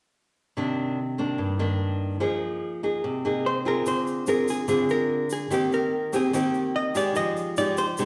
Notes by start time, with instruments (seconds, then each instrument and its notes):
0.57 nylon-string guitar C3 D#3 A#3 D4
1.18 nylon-string guitar D#3 A#3 D4
1.38 nylon-string guitar G2
1.59 nylon-string guitar D#3 A#3 D4
2.20 nylon-string guitar F3 A#3 D#4 G#4
2.83 nylon-string guitar A#3 D#4 G#4
3.04 nylon-string guitar C3
3.25 nylon-string guitar A#3 D#4 G#4
3.46 hollow-body jazz guitar C5
3.65 nylon-string guitar C4 F4 G#4, hollow-body jazz guitar A#4
3.86 nylon-string guitar D3, hollow-body jazz guitar C5, shaker
4.07 shaker
4.27 nylon-string guitar C4 F4 G#4, hollow-body jazz guitar A#4, shaker
4.48 hollow-body jazz guitar G#4, shaker
4.68 nylon-string guitar D3 C4 F4 G#4, shaker
4.89 hollow-body jazz guitar A#4, shaker
5.30 hollow-body jazz guitar G#4, shaker
5.50 nylon-string guitar D#3 A#3 C4 G4, hollow-body jazz guitar G4, shaker
5.72 hollow-body jazz guitar A#4, shaker
6.13 nylon-string guitar A#3 C4 G4, hollow-body jazz guitar G#4, shaker
6.33 nylon-string guitar D#3 A#3 C4 G4, hollow-body jazz guitar G4, shaker
6.54 shaker
6.76 hollow-body jazz guitar D#5
6.95 nylon-string guitar G#3 D#4 G4, hollow-body jazz guitar D5, shaker
7.15 nylon-string guitar F3, hollow-body jazz guitar D#5, shaker
7.37 shaker
7.57 nylon-string guitar G#3 D#4 G4, hollow-body jazz guitar D5, shaker
7.77 hollow-body jazz guitar C5, shaker
7.97 nylon-string guitar C3 G#3 D#4 G4, shaker